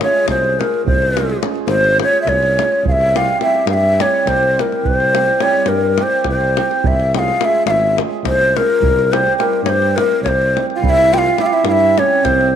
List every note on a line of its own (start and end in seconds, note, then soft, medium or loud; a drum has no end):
0.01 0.58 G#3 medium
0.01 0.24 C#4 medium
0.01 0.24 F4 medium
0.01 0.24 G#4 medium
0.01 0.27 C#5 medium
0.01 davul high medium
0.27 0.62 C2 medium
0.27 0.61 C5 medium
0.27 davul high medium
0.27 davul low soft
0.44 davul high soft
0.59 1.14 G#3 soft
0.59 0.82 C#4 medium
0.59 0.82 F4 soft
0.59 0.83 G#4 medium
0.59 0.86 A#4 medium
0.59 davul high medium
0.74 davul high soft
0.85 1.35 C2 medium
0.85 1.38 C5 medium
0.85 davul low medium
1.02 davul high soft
1.16 1.40 G#3 medium
1.16 1.38 C#4 medium
1.16 1.38 F4 soft
1.16 1.39 G#4 medium
1.16 davul high medium
1.30 davul high soft
1.42 1.97 G#3 medium
1.42 1.64 C#4 medium
1.42 1.64 F4 medium
1.42 1.65 G#4 medium
1.42 davul high medium
1.55 davul high soft
1.67 2.02 G#1 loud
1.67 1.98 C5 medium
1.67 davul high medium
1.84 davul high soft
1.98 2.56 G#3 medium
1.98 2.22 C#4 medium
1.98 2.22 F4 medium
1.98 2.23 G#4 medium
1.98 davul high medium
2.03 2.20 C#5 medium
2.13 davul high soft
2.22 2.61 C2 medium
2.22 2.31 E5 medium
2.27 2.87 C#5 medium
2.27 davul high medium
2.27 davul low soft
2.43 davul high soft
2.57 2.90 G#3 medium
2.57 2.81 C#4 soft
2.57 2.81 F4 soft
2.57 2.81 G#4 medium
2.57 davul high medium
2.72 davul high soft
2.83 3.33 C2 medium
2.83 davul low medium
2.88 3.18 E5 medium
2.88 2.93 F5 medium
3.01 davul high soft
3.15 3.40 G3 medium
3.15 3.37 C4 medium
3.15 3.37 E4 medium
3.15 3.37 G4 medium
3.15 3.42 F5 medium
3.15 davul high medium
3.41 3.98 G3 medium
3.41 3.63 C4 soft
3.41 3.64 E4 medium
3.41 3.64 G4 medium
3.41 3.66 E5 medium
3.41 davul high medium
3.54 davul high soft
3.67 4.02 G2 medium
3.67 3.75 F5 medium
3.67 davul high medium
3.74 4.03 E5 medium
3.99 4.56 G3 medium
3.99 4.22 C4 medium
3.99 4.22 E4 medium
3.99 4.23 G4 medium
3.99 4.30 C#5 medium
3.99 davul high medium
4.25 4.61 C2 medium
4.25 4.62 C5 medium
4.25 davul high medium
4.25 davul low soft
4.43 davul high soft
4.57 5.13 G3 soft
4.57 4.80 C4 soft
4.57 4.81 E4 soft
4.57 4.81 G4 medium
4.57 davul high medium
4.61 4.88 A#4 medium
4.72 davul high soft
4.84 5.34 C2 medium
4.84 5.44 C5 loud
4.84 davul low medium
5.00 davul high soft
5.14 5.40 G3 soft
5.14 5.37 C4 medium
5.14 5.37 E4 medium
5.14 5.37 G4 medium
5.14 davul high medium
5.28 davul high soft
5.40 5.97 G3 medium
5.40 5.63 C4 medium
5.40 5.64 E4 medium
5.40 5.64 G4 medium
5.40 5.70 C#5 medium
5.40 davul high medium
5.53 davul high soft
5.66 6.02 G2 medium
5.66 6.04 A#4 medium
5.66 davul high medium
5.98 6.56 G3 medium
5.98 6.22 C4 soft
5.98 6.22 E4 soft
5.98 6.22 G4 medium
5.98 davul high medium
6.03 6.28 C5 medium
6.24 6.61 C2 medium
6.24 davul high medium
6.24 davul low medium
6.30 6.88 C5 medium
6.41 davul high soft
6.57 6.90 G3 soft
6.57 6.80 C4 soft
6.57 6.80 E4 soft
6.57 6.81 G4 medium
6.57 davul high medium
6.71 davul high soft
6.83 7.33 C2 medium
6.83 7.15 E5 medium
6.83 davul low medium
7.00 davul high soft
7.14 7.39 G#3 medium
7.14 7.36 C#4 medium
7.14 7.36 F4 soft
7.14 7.37 G#4 medium
7.14 7.20 G5 medium
7.14 davul high medium
7.19 7.41 F5 medium
7.28 davul high soft
7.41 7.96 G#3 medium
7.41 7.62 C#4 soft
7.41 7.63 F4 medium
7.41 7.63 G#4 medium
7.41 7.66 E5 medium
7.41 7.46 F5 medium
7.41 davul high medium
7.65 8.01 G#1 medium
7.65 7.72 F5 medium
7.65 davul high medium
7.71 7.96 E5 medium
7.97 8.56 G#3 medium
7.97 8.21 C#4 medium
7.97 8.21 F4 medium
7.97 8.22 G#4 medium
7.97 davul high medium
8.23 8.59 C2 medium
8.23 8.58 C5 loud
8.23 davul high medium
8.23 davul low medium
8.41 davul high soft
8.57 8.89 G#3 medium
8.57 8.80 C#4 soft
8.57 8.80 F4 soft
8.57 8.81 G#4 medium
8.57 9.14 A#4 medium
8.57 davul high medium
8.70 davul high soft
8.81 9.31 C2 medium
8.81 davul low medium
8.99 davul high soft
9.12 9.37 G3 medium
9.12 9.35 C4 medium
9.12 9.35 E4 soft
9.12 9.36 G4 medium
9.12 9.37 C5 loud
9.12 davul high medium
9.27 davul high soft
9.38 9.96 G3 medium
9.38 9.61 C4 medium
9.38 9.62 E4 medium
9.38 9.62 G4 medium
9.38 9.63 A#4 medium
9.38 davul high medium
9.53 davul high soft
9.63 9.99 G2 medium
9.63 9.70 C#5 medium
9.63 davul high medium
9.69 9.97 C5 loud
9.82 davul high soft
9.96 10.54 G3 medium
9.96 10.20 C4 medium
9.96 10.21 E4 medium
9.96 10.21 G4 medium
9.96 10.22 A#4 medium
9.96 davul high medium
10.12 davul high soft
10.22 10.58 C2 medium
10.22 10.29 C#5 medium
10.22 davul high medium
10.22 davul low soft
10.28 10.66 C5 medium
10.42 davul high soft
10.55 10.89 G3 soft
10.55 10.79 C4 soft
10.55 10.79 E4 soft
10.55 10.80 G4 soft
10.55 davul high medium
10.70 davul high soft
10.76 10.83 F4 medium
10.76 10.85 F5 medium
10.81 11.31 C2 medium
10.81 11.13 E4 loud
10.81 10.90 F5 loud
10.81 davul low medium
10.89 11.15 E5 loud
10.99 davul high soft
11.12 11.37 G3 medium
11.12 11.35 C4 soft
11.12 11.35 E4 medium
11.12 11.39 F4 medium
11.12 11.36 G4 medium
11.12 11.19 G5 medium
11.12 davul high medium
11.18 11.43 F5 loud
11.26 davul high soft
11.38 11.96 G3 medium
11.38 11.61 C4 medium
11.38 11.47 E4 medium
11.38 11.61 E4 medium
11.38 11.62 G4 medium
11.38 11.48 E5 medium
11.38 davul high medium
11.45 11.54 F4 medium
11.45 11.55 F5 medium
11.53 11.66 E4 medium
11.53 11.66 E5 medium
11.53 davul high soft
11.64 12.00 G2 medium
11.64 12.01 E4 medium
11.64 11.73 F5 medium
11.64 davul high medium
11.72 12.00 E5 loud
11.97 12.54 G3 medium
11.97 12.20 C4 medium
11.97 12.27 C#4 medium
11.97 12.20 E4 medium
11.97 12.20 G4 medium
11.97 12.26 C#5 medium
11.97 davul high medium
12.24 12.56 C2 medium
12.24 12.56 C4 medium
12.24 12.56 C5 medium
12.24 davul high medium
12.24 davul low medium
12.41 davul high soft